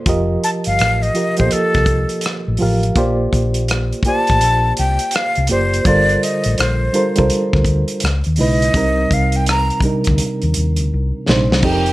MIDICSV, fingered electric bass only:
0, 0, Header, 1, 3, 480
1, 0, Start_track
1, 0, Tempo, 722892
1, 45, Time_signature, 4, 2, 24, 8
1, 7920, End_track
2, 0, Start_track
2, 0, Title_t, "Fingered electric bass"
2, 0, Program_c, 0, 33
2, 47, Note_on_c, 0, 29, 83
2, 238, Note_off_c, 0, 29, 0
2, 445, Note_on_c, 0, 31, 66
2, 512, Note_off_c, 0, 31, 0
2, 533, Note_on_c, 0, 33, 79
2, 722, Note_off_c, 0, 33, 0
2, 934, Note_on_c, 0, 34, 83
2, 998, Note_off_c, 0, 34, 0
2, 1167, Note_on_c, 0, 36, 81
2, 1355, Note_off_c, 0, 36, 0
2, 1646, Note_on_c, 0, 33, 78
2, 1713, Note_off_c, 0, 33, 0
2, 1736, Note_on_c, 0, 33, 74
2, 1924, Note_off_c, 0, 33, 0
2, 1973, Note_on_c, 0, 34, 91
2, 2162, Note_off_c, 0, 34, 0
2, 2216, Note_on_c, 0, 34, 94
2, 2596, Note_off_c, 0, 34, 0
2, 2860, Note_on_c, 0, 33, 85
2, 2938, Note_off_c, 0, 33, 0
2, 2938, Note_on_c, 0, 34, 93
2, 3125, Note_off_c, 0, 34, 0
2, 3182, Note_on_c, 0, 36, 93
2, 3297, Note_off_c, 0, 36, 0
2, 3570, Note_on_c, 0, 36, 81
2, 3635, Note_off_c, 0, 36, 0
2, 3656, Note_on_c, 0, 30, 72
2, 3843, Note_off_c, 0, 30, 0
2, 3894, Note_on_c, 0, 31, 98
2, 4082, Note_off_c, 0, 31, 0
2, 4288, Note_on_c, 0, 33, 90
2, 4354, Note_off_c, 0, 33, 0
2, 4377, Note_on_c, 0, 34, 88
2, 4564, Note_off_c, 0, 34, 0
2, 4778, Note_on_c, 0, 36, 84
2, 4840, Note_off_c, 0, 36, 0
2, 5011, Note_on_c, 0, 38, 83
2, 5197, Note_off_c, 0, 38, 0
2, 5336, Note_on_c, 0, 37, 92
2, 5453, Note_off_c, 0, 37, 0
2, 5488, Note_on_c, 0, 39, 83
2, 5554, Note_off_c, 0, 39, 0
2, 5575, Note_on_c, 0, 35, 85
2, 5763, Note_off_c, 0, 35, 0
2, 5811, Note_on_c, 0, 36, 104
2, 6001, Note_off_c, 0, 36, 0
2, 6055, Note_on_c, 0, 36, 92
2, 6435, Note_off_c, 0, 36, 0
2, 6695, Note_on_c, 0, 38, 99
2, 6759, Note_off_c, 0, 38, 0
2, 6927, Note_on_c, 0, 39, 91
2, 6993, Note_off_c, 0, 39, 0
2, 7019, Note_on_c, 0, 39, 94
2, 7169, Note_off_c, 0, 39, 0
2, 7169, Note_on_c, 0, 38, 87
2, 7234, Note_off_c, 0, 38, 0
2, 7260, Note_on_c, 0, 36, 88
2, 7376, Note_off_c, 0, 36, 0
2, 7492, Note_on_c, 0, 34, 98
2, 7642, Note_off_c, 0, 34, 0
2, 7642, Note_on_c, 0, 36, 98
2, 7711, Note_off_c, 0, 36, 0
2, 7729, Note_on_c, 0, 29, 86
2, 7920, Note_off_c, 0, 29, 0
2, 7920, End_track
3, 0, Start_track
3, 0, Title_t, "Muted fingered electric bass strokes"
3, 2681, Note_on_c, 9, 29, 46
3, 2747, Note_off_c, 9, 29, 0
3, 4856, Note_on_c, 9, 29, 45
3, 4922, Note_off_c, 9, 29, 0
3, 6518, Note_on_c, 9, 29, 50
3, 6584, Note_off_c, 9, 29, 0
3, 7920, End_track
0, 0, End_of_file